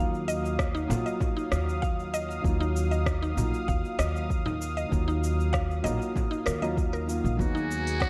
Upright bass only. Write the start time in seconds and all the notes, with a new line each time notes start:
Already playing: D#2
0.90 A#1
1.52 D#2
2.44 D#2
3.37 A#1
3.68 D#2
3.99 D#2
4.92 D#2
5.85 A#1
6.46 D#2
7.24 A#1
7.39 D#2